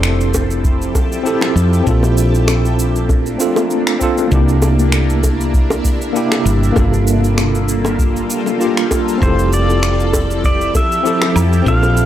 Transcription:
Already playing: fretless electric bass F1, ambient pad F3 E4 G4 A4, tine electric piano C4 E4 G4 A4
0.03 finger snap, cabasa
0.21 cabasa
0.34 kick, high bongo, cabasa
0.51 cabasa
0.65 kick, cabasa
0.82 cabasa
0.95 kick, high bongo, cabasa
1.12 cabasa
1.23 tine electric piano C4 E4 G4 A4, cabasa
1.41 finger snap, high bongo, cabasa
1.56 fretless electric bass F2, cabasa
1.73 cabasa
1.83 fretless electric bass A#1, tine electric piano C4 D4, ambient pad D4, kick, cabasa
1.87 ambient pad A3 A#3, tine electric piano F4 A4
2.03 high bongo, cabasa
2.17 cabasa
2.35 cabasa
2.48 finger snap, high bongo, cabasa
2.65 cabasa
2.79 cabasa
2.96 cabasa
3.09 kick, high bongo, cabasa
3.26 cabasa
3.38 tine electric piano C4 D4 F4 A4, cabasa
3.56 high bongo, cabasa
3.70 cabasa
3.87 finger snap, cabasa
3.99 tine electric piano C4 D4 F4 A4, kick, cabasa
4.18 high bongo, cabasa
4.27 ambient pad C3 D4 E4, tine electric piano A#3 D4
4.32 fretless electric bass C2, tine electric piano E4 G4, kick, cabasa
4.48 cabasa
4.62 high bongo, cabasa
4.79 cabasa
4.92 finger snap, cabasa
5.10 cabasa
5.23 kick, high bongo, cabasa
5.41 cabasa
5.54 kick, cabasa
5.70 high bongo, cabasa
5.85 kick, cabasa
6.02 cabasa
6.13 tine electric piano A#3 D4 E4 G4, cabasa
6.32 finger snap, high bongo, cabasa
6.45 fretless electric bass G1, cabasa
6.63 cabasa
6.72 ambient pad G3 A#3, tine electric piano A#3 D4, high bongo
6.76 fretless electric bass G1, ambient pad F4 A4, tine electric piano F4 A4, kick, cabasa
6.93 cabasa
7.07 cabasa
7.24 cabasa
7.38 finger snap, high bongo, cabasa
7.55 cabasa
7.68 cabasa
7.85 high bongo, cabasa
7.99 kick, cabasa
8.16 cabasa
8.30 cabasa
8.46 high bongo, cabasa
8.58 tine electric piano A#3 D4 F4 G4, cabasa
8.77 finger snap, cabasa
8.91 kick, high bongo, cabasa
9.08 cabasa
9.18 fretless electric bass F1, tine electric piano C4 E4
9.22 ambient pad F3 E4 G4, tine electric piano G4 A4, pedal steel guitar C5, kick, cabasa
9.39 cabasa
9.53 pedal steel guitar D5, cabasa
9.69 high bongo, cabasa
9.83 finger snap, cabasa
10.00 cabasa
10.13 kick, high bongo, cabasa
10.31 cabasa
10.44 pedal steel guitar D5, kick, cabasa
10.61 cabasa
10.75 pedal steel guitar E5, kick, high bongo, cabasa
10.92 cabasa
11.03 tine electric piano C4 E4 G4 A4, cabasa
11.22 finger snap, high bongo, cabasa
11.36 fretless electric bass F2, cabasa, low woodblock
11.53 cabasa
11.62 tine electric piano C4 D4
11.66 fretless electric bass A#1, tine electric piano F4 A4, pedal steel guitar F5, kick, cabasa
11.83 high bongo, cabasa
11.97 cabasa

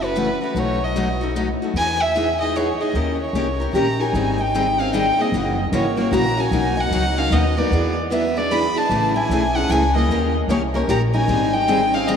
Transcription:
Already playing: upright bass F#1
0.02 steel-string acoustic guitar A3 C#4 F#4, violin B4
0.16 steel-string acoustic guitar C#3 E3 A3 C#4 F#4
0.42 steel-string acoustic guitar A3 C#4 F#4, violin B4
0.55 upright bass B1, steel-string acoustic guitar B2 F#3 A3 D#4 F#4, violin C#5
0.84 violin D#5
0.96 steel-string acoustic guitar B2 F#3 A3 D#4 F#4
1.21 steel-string acoustic guitar A3 D#4 F#4
1.36 steel-string acoustic guitar B2 F#3 A3 D#4 F#4
1.62 steel-string acoustic guitar A3 D#4 F#4
1.74 upright bass E2, steel-string acoustic guitar E3 B3 D#4 G#4, violin G#5
2.01 violin E5
2.16 steel-string acoustic guitar E3 B3 D#4 G#4
2.41 steel-string acoustic guitar B3 D#4 G#4, violin D#5
2.56 steel-string acoustic guitar E3 B3 D#4 G#4, violin C#5
2.81 steel-string acoustic guitar B3 D#4 G#4, violin D#5
2.94 upright bass D#2, steel-string acoustic guitar D#3 A#3 C#4 G4 A#4
3.21 violin C#5
3.33 upright bass C2, steel-string acoustic guitar D#3 A#3 C#4 G4 A#4
3.60 steel-string acoustic guitar C#4 G4 A#4
3.73 upright bass A#1, steel-string acoustic guitar D#3 A#3 C#4 G4 A#4, violin A#5
3.99 steel-string acoustic guitar C#4 D#4 G4 A#4, violin G#5
4.13 upright bass G#1, steel-string acoustic guitar D#3 G3 C4 D#4 G#4
4.38 steel-string acoustic guitar D#4, violin G5
4.55 steel-string acoustic guitar D#3 G3 C4 D#4 G#4
4.79 steel-string acoustic guitar C4 C#4 D#4 G#4, violin F5
4.93 steel-string acoustic guitar D#3 G3 C4 D#4 G#4, violin G5
5.19 steel-string acoustic guitar A#3 C4 D#4 G#4, violin D#5
5.32 upright bass F#1, steel-string acoustic guitar C#3 E3 A#3 C#4 F#4
5.72 upright bass G#1, steel-string acoustic guitar C#3 E3 A#3 C#4 F#4, violin C#5
5.97 steel-string acoustic guitar A#3 C#4 F#4, violin C#5
6.12 upright bass A#1, steel-string acoustic guitar C#3 E3 A#3 C#4 F#4, violin A#5
6.37 steel-string acoustic guitar A#3 C#4 D#4 F#4, violin G#5
6.51 upright bass B1, steel-string acoustic guitar B2 F#3 A#3 D#4 F#4
6.77 steel-string acoustic guitar D#4, violin F#5
6.91 upright bass C#2, steel-string acoustic guitar B2 F#3 A#3 D#4 F#4
7.17 steel-string acoustic guitar A#3 C#4 D#4 F#4, violin F5
7.31 upright bass D#2, steel-string acoustic guitar B2 F#3 A#3 B3 D#4 F#4, violin D#5
7.57 steel-string acoustic guitar A#3 B3 D#4 F#4, violin D5
7.71 upright bass E2, steel-string acoustic guitar E3 B3 D4 G#4
8.11 steel-string acoustic guitar E3 B3 D4 G#4, violin E5
8.37 steel-string acoustic guitar B3 D4 G#4, violin D5
8.51 steel-string acoustic guitar E3 B3 D4 G#4, violin B5
8.76 steel-string acoustic guitar B3 D4 E4 G#4, violin A5
8.90 upright bass A1, steel-string acoustic guitar C#3 E3 A3 C#4 G#4
9.16 steel-string acoustic guitar E4, violin G#5
9.29 upright bass B1, steel-string acoustic guitar C#3 E3 A3 C#4 G#4
9.55 steel-string acoustic guitar A3 C#4 D#4 G#4, violin F#5
9.69 upright bass C#2, steel-string acoustic guitar C#3 E3 A3 C#4 E4 G#4, violin G#5
9.95 steel-string acoustic guitar A3 A#3 C#4 G#4, violin D#5
10.08 upright bass D#2, steel-string acoustic guitar D#3 A#3 C#4 G4 A#4
10.48 upright bass C2, steel-string acoustic guitar D#3 A#3 C#4 G4 A#4, violin C#5
10.74 steel-string acoustic guitar A#3 C#4 G4 A#4, violin C#5
10.88 upright bass A#1, steel-string acoustic guitar D#3 A#3 C#4 G4 A#4, violin A#5
11.14 steel-string acoustic guitar C#4 D#4 G4 A#4, violin G#5
11.28 upright bass G#1, steel-string acoustic guitar D#3 G3 C4 D#4 G#4
11.53 steel-string acoustic guitar D#4, violin G5
11.68 steel-string acoustic guitar D#3 G3 C4 D#4 G#4
11.93 steel-string acoustic guitar C4 C#4 D#4 G#4, violin F5
12.07 steel-string acoustic guitar D#3 G3 C4 D#4 G#4, violin D#5

